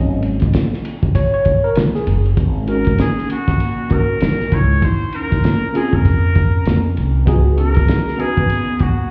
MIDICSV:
0, 0, Header, 1, 6, 480
1, 0, Start_track
1, 0, Key_signature, 5, "minor"
1, 0, Tempo, 612245
1, 1861, Time_signature, 4, 2, 24, 8
1, 7140, End_track
2, 0, Start_track
2, 0, Title_t, "Muted trumpet"
2, 0, Program_c, 0, 59
2, 2112, Note_on_c, 0, 70, 81
2, 2330, Note_off_c, 0, 70, 0
2, 2352, Note_on_c, 0, 68, 91
2, 2570, Note_off_c, 0, 68, 0
2, 2600, Note_on_c, 0, 66, 95
2, 3080, Note_on_c, 0, 70, 97
2, 3092, Note_off_c, 0, 66, 0
2, 3557, Note_on_c, 0, 73, 95
2, 3569, Note_off_c, 0, 70, 0
2, 3798, Note_on_c, 0, 72, 109
2, 3810, Note_off_c, 0, 73, 0
2, 4040, Note_on_c, 0, 70, 104
2, 4052, Note_off_c, 0, 72, 0
2, 4522, Note_on_c, 0, 68, 87
2, 4534, Note_off_c, 0, 70, 0
2, 4662, Note_on_c, 0, 70, 95
2, 4674, Note_off_c, 0, 68, 0
2, 5469, Note_off_c, 0, 70, 0
2, 5953, Note_on_c, 0, 70, 93
2, 6430, Note_on_c, 0, 68, 108
2, 6442, Note_off_c, 0, 70, 0
2, 6910, Note_on_c, 0, 66, 85
2, 6922, Note_off_c, 0, 68, 0
2, 7140, Note_off_c, 0, 66, 0
2, 7140, End_track
3, 0, Start_track
3, 0, Title_t, "Tine electric piano"
3, 0, Program_c, 1, 4
3, 0, Note_on_c, 1, 54, 54
3, 0, Note_on_c, 1, 58, 47
3, 0, Note_on_c, 1, 61, 68
3, 278, Note_off_c, 1, 54, 0
3, 280, Note_off_c, 1, 58, 0
3, 283, Note_off_c, 1, 61, 0
3, 903, Note_on_c, 1, 73, 100
3, 1040, Note_off_c, 1, 73, 0
3, 1049, Note_on_c, 1, 73, 94
3, 1286, Note_on_c, 1, 70, 89
3, 1295, Note_off_c, 1, 73, 0
3, 1394, Note_off_c, 1, 70, 0
3, 1531, Note_on_c, 1, 68, 75
3, 1840, Note_off_c, 1, 68, 0
3, 2089, Note_on_c, 1, 61, 61
3, 2094, Note_on_c, 1, 63, 56
3, 2100, Note_on_c, 1, 66, 53
3, 2107, Note_on_c, 1, 70, 69
3, 2278, Note_off_c, 1, 61, 0
3, 2281, Note_off_c, 1, 63, 0
3, 2284, Note_off_c, 1, 66, 0
3, 2287, Note_off_c, 1, 70, 0
3, 3051, Note_on_c, 1, 61, 54
3, 3056, Note_on_c, 1, 63, 57
3, 3063, Note_on_c, 1, 66, 53
3, 3069, Note_on_c, 1, 70, 60
3, 3412, Note_off_c, 1, 61, 0
3, 3414, Note_off_c, 1, 63, 0
3, 3418, Note_off_c, 1, 66, 0
3, 3421, Note_off_c, 1, 70, 0
3, 4492, Note_on_c, 1, 58, 63
3, 4498, Note_on_c, 1, 61, 57
3, 4503, Note_on_c, 1, 65, 60
3, 4511, Note_on_c, 1, 68, 74
3, 4679, Note_off_c, 1, 58, 0
3, 4682, Note_off_c, 1, 61, 0
3, 4685, Note_off_c, 1, 65, 0
3, 4689, Note_off_c, 1, 68, 0
3, 5689, Note_on_c, 1, 59, 80
3, 5694, Note_on_c, 1, 63, 72
3, 5700, Note_on_c, 1, 65, 58
3, 5707, Note_on_c, 1, 68, 93
3, 5752, Note_on_c, 1, 66, 73
3, 5762, Note_off_c, 1, 65, 0
3, 6377, Note_off_c, 1, 59, 0
3, 6379, Note_off_c, 1, 63, 0
3, 6386, Note_off_c, 1, 68, 0
3, 6408, Note_off_c, 1, 66, 0
3, 6411, Note_on_c, 1, 59, 70
3, 6418, Note_on_c, 1, 63, 59
3, 6423, Note_on_c, 1, 66, 58
3, 6429, Note_on_c, 1, 71, 69
3, 6599, Note_off_c, 1, 59, 0
3, 6602, Note_off_c, 1, 63, 0
3, 6605, Note_off_c, 1, 66, 0
3, 6608, Note_off_c, 1, 71, 0
3, 7140, End_track
4, 0, Start_track
4, 0, Title_t, "Vibraphone"
4, 0, Program_c, 2, 11
4, 2111, Note_on_c, 2, 61, 66
4, 2330, Note_off_c, 2, 61, 0
4, 2352, Note_on_c, 2, 61, 72
4, 2570, Note_off_c, 2, 61, 0
4, 2591, Note_on_c, 2, 58, 67
4, 3034, Note_off_c, 2, 58, 0
4, 3075, Note_on_c, 2, 61, 79
4, 3548, Note_off_c, 2, 61, 0
4, 3554, Note_on_c, 2, 64, 79
4, 3787, Note_off_c, 2, 64, 0
4, 3800, Note_on_c, 2, 63, 84
4, 4031, Note_off_c, 2, 63, 0
4, 4037, Note_on_c, 2, 61, 70
4, 4509, Note_off_c, 2, 61, 0
4, 4516, Note_on_c, 2, 60, 67
4, 4654, Note_off_c, 2, 60, 0
4, 4657, Note_on_c, 2, 61, 66
4, 5466, Note_off_c, 2, 61, 0
4, 5937, Note_on_c, 2, 61, 77
4, 6388, Note_off_c, 2, 61, 0
4, 6423, Note_on_c, 2, 59, 77
4, 6902, Note_off_c, 2, 59, 0
4, 6902, Note_on_c, 2, 58, 68
4, 7140, Note_off_c, 2, 58, 0
4, 7140, End_track
5, 0, Start_track
5, 0, Title_t, "Upright bass"
5, 0, Program_c, 3, 32
5, 0, Note_on_c, 3, 32, 91
5, 390, Note_off_c, 3, 32, 0
5, 808, Note_on_c, 3, 34, 71
5, 1353, Note_off_c, 3, 34, 0
5, 1384, Note_on_c, 3, 34, 90
5, 1599, Note_off_c, 3, 34, 0
5, 1622, Note_on_c, 3, 30, 100
5, 1838, Note_off_c, 3, 30, 0
5, 1862, Note_on_c, 3, 32, 91
5, 2310, Note_off_c, 3, 32, 0
5, 2729, Note_on_c, 3, 34, 76
5, 3274, Note_off_c, 3, 34, 0
5, 3306, Note_on_c, 3, 34, 85
5, 3520, Note_off_c, 3, 34, 0
5, 3546, Note_on_c, 3, 37, 101
5, 3760, Note_off_c, 3, 37, 0
5, 4652, Note_on_c, 3, 41, 80
5, 5195, Note_off_c, 3, 41, 0
5, 5226, Note_on_c, 3, 41, 101
5, 5440, Note_off_c, 3, 41, 0
5, 5469, Note_on_c, 3, 36, 86
5, 5682, Note_off_c, 3, 36, 0
5, 5704, Note_on_c, 3, 37, 87
5, 6151, Note_off_c, 3, 37, 0
5, 6566, Note_on_c, 3, 39, 84
5, 7112, Note_off_c, 3, 39, 0
5, 7140, End_track
6, 0, Start_track
6, 0, Title_t, "Drums"
6, 177, Note_on_c, 9, 51, 56
6, 255, Note_off_c, 9, 51, 0
6, 311, Note_on_c, 9, 51, 43
6, 320, Note_on_c, 9, 38, 35
6, 330, Note_on_c, 9, 36, 92
6, 389, Note_off_c, 9, 51, 0
6, 398, Note_off_c, 9, 38, 0
6, 408, Note_off_c, 9, 36, 0
6, 418, Note_on_c, 9, 44, 53
6, 418, Note_on_c, 9, 51, 75
6, 429, Note_on_c, 9, 38, 126
6, 497, Note_off_c, 9, 44, 0
6, 497, Note_off_c, 9, 51, 0
6, 507, Note_off_c, 9, 38, 0
6, 575, Note_on_c, 9, 38, 37
6, 654, Note_off_c, 9, 38, 0
6, 665, Note_on_c, 9, 51, 74
6, 744, Note_off_c, 9, 51, 0
6, 805, Note_on_c, 9, 36, 92
6, 884, Note_off_c, 9, 36, 0
6, 901, Note_on_c, 9, 36, 84
6, 902, Note_on_c, 9, 51, 83
6, 980, Note_off_c, 9, 36, 0
6, 980, Note_off_c, 9, 51, 0
6, 1135, Note_on_c, 9, 51, 51
6, 1143, Note_on_c, 9, 36, 82
6, 1213, Note_off_c, 9, 51, 0
6, 1221, Note_off_c, 9, 36, 0
6, 1374, Note_on_c, 9, 44, 53
6, 1374, Note_on_c, 9, 51, 75
6, 1390, Note_on_c, 9, 38, 127
6, 1453, Note_off_c, 9, 44, 0
6, 1453, Note_off_c, 9, 51, 0
6, 1468, Note_off_c, 9, 38, 0
6, 1527, Note_on_c, 9, 38, 35
6, 1605, Note_off_c, 9, 38, 0
6, 1621, Note_on_c, 9, 51, 62
6, 1700, Note_off_c, 9, 51, 0
6, 1768, Note_on_c, 9, 51, 33
6, 1847, Note_off_c, 9, 51, 0
6, 1859, Note_on_c, 9, 36, 108
6, 1860, Note_on_c, 9, 51, 67
6, 1938, Note_off_c, 9, 36, 0
6, 1938, Note_off_c, 9, 51, 0
6, 2097, Note_on_c, 9, 51, 53
6, 2175, Note_off_c, 9, 51, 0
6, 2231, Note_on_c, 9, 51, 42
6, 2250, Note_on_c, 9, 36, 77
6, 2310, Note_off_c, 9, 51, 0
6, 2329, Note_off_c, 9, 36, 0
6, 2339, Note_on_c, 9, 44, 50
6, 2339, Note_on_c, 9, 51, 73
6, 2349, Note_on_c, 9, 38, 114
6, 2418, Note_off_c, 9, 44, 0
6, 2418, Note_off_c, 9, 51, 0
6, 2428, Note_off_c, 9, 38, 0
6, 2495, Note_on_c, 9, 38, 32
6, 2573, Note_off_c, 9, 38, 0
6, 2585, Note_on_c, 9, 51, 75
6, 2664, Note_off_c, 9, 51, 0
6, 2727, Note_on_c, 9, 36, 97
6, 2728, Note_on_c, 9, 51, 42
6, 2731, Note_on_c, 9, 38, 33
6, 2805, Note_off_c, 9, 36, 0
6, 2807, Note_off_c, 9, 51, 0
6, 2809, Note_off_c, 9, 38, 0
6, 2823, Note_on_c, 9, 51, 69
6, 2901, Note_off_c, 9, 51, 0
6, 3056, Note_on_c, 9, 51, 51
6, 3064, Note_on_c, 9, 36, 93
6, 3134, Note_off_c, 9, 51, 0
6, 3142, Note_off_c, 9, 36, 0
6, 3296, Note_on_c, 9, 44, 47
6, 3296, Note_on_c, 9, 51, 71
6, 3312, Note_on_c, 9, 38, 118
6, 3374, Note_off_c, 9, 44, 0
6, 3374, Note_off_c, 9, 51, 0
6, 3390, Note_off_c, 9, 38, 0
6, 3450, Note_on_c, 9, 38, 35
6, 3528, Note_off_c, 9, 38, 0
6, 3541, Note_on_c, 9, 51, 57
6, 3544, Note_on_c, 9, 36, 92
6, 3620, Note_off_c, 9, 51, 0
6, 3623, Note_off_c, 9, 36, 0
6, 3781, Note_on_c, 9, 36, 98
6, 3782, Note_on_c, 9, 51, 69
6, 3859, Note_off_c, 9, 36, 0
6, 3861, Note_off_c, 9, 51, 0
6, 4019, Note_on_c, 9, 51, 57
6, 4097, Note_off_c, 9, 51, 0
6, 4162, Note_on_c, 9, 38, 37
6, 4172, Note_on_c, 9, 36, 89
6, 4241, Note_off_c, 9, 38, 0
6, 4250, Note_off_c, 9, 36, 0
6, 4263, Note_on_c, 9, 44, 51
6, 4263, Note_on_c, 9, 51, 62
6, 4274, Note_on_c, 9, 38, 104
6, 4342, Note_off_c, 9, 44, 0
6, 4342, Note_off_c, 9, 51, 0
6, 4352, Note_off_c, 9, 38, 0
6, 4508, Note_on_c, 9, 51, 68
6, 4587, Note_off_c, 9, 51, 0
6, 4649, Note_on_c, 9, 36, 85
6, 4727, Note_off_c, 9, 36, 0
6, 4744, Note_on_c, 9, 36, 79
6, 4746, Note_on_c, 9, 51, 67
6, 4822, Note_off_c, 9, 36, 0
6, 4825, Note_off_c, 9, 51, 0
6, 4979, Note_on_c, 9, 51, 50
6, 4985, Note_on_c, 9, 36, 84
6, 5058, Note_off_c, 9, 51, 0
6, 5063, Note_off_c, 9, 36, 0
6, 5217, Note_on_c, 9, 44, 52
6, 5217, Note_on_c, 9, 51, 74
6, 5233, Note_on_c, 9, 38, 121
6, 5295, Note_off_c, 9, 44, 0
6, 5295, Note_off_c, 9, 51, 0
6, 5311, Note_off_c, 9, 38, 0
6, 5464, Note_on_c, 9, 51, 54
6, 5543, Note_off_c, 9, 51, 0
6, 5701, Note_on_c, 9, 36, 114
6, 5703, Note_on_c, 9, 51, 74
6, 5779, Note_off_c, 9, 36, 0
6, 5781, Note_off_c, 9, 51, 0
6, 5940, Note_on_c, 9, 51, 54
6, 6018, Note_off_c, 9, 51, 0
6, 6072, Note_on_c, 9, 51, 46
6, 6091, Note_on_c, 9, 36, 88
6, 6150, Note_off_c, 9, 51, 0
6, 6169, Note_off_c, 9, 36, 0
6, 6179, Note_on_c, 9, 44, 52
6, 6179, Note_on_c, 9, 51, 75
6, 6189, Note_on_c, 9, 38, 105
6, 6258, Note_off_c, 9, 44, 0
6, 6258, Note_off_c, 9, 51, 0
6, 6268, Note_off_c, 9, 38, 0
6, 6334, Note_on_c, 9, 38, 34
6, 6413, Note_off_c, 9, 38, 0
6, 6425, Note_on_c, 9, 51, 65
6, 6503, Note_off_c, 9, 51, 0
6, 6565, Note_on_c, 9, 36, 84
6, 6644, Note_off_c, 9, 36, 0
6, 6661, Note_on_c, 9, 51, 73
6, 6740, Note_off_c, 9, 51, 0
6, 6893, Note_on_c, 9, 51, 51
6, 6903, Note_on_c, 9, 36, 86
6, 6972, Note_off_c, 9, 51, 0
6, 6981, Note_off_c, 9, 36, 0
6, 7140, End_track
0, 0, End_of_file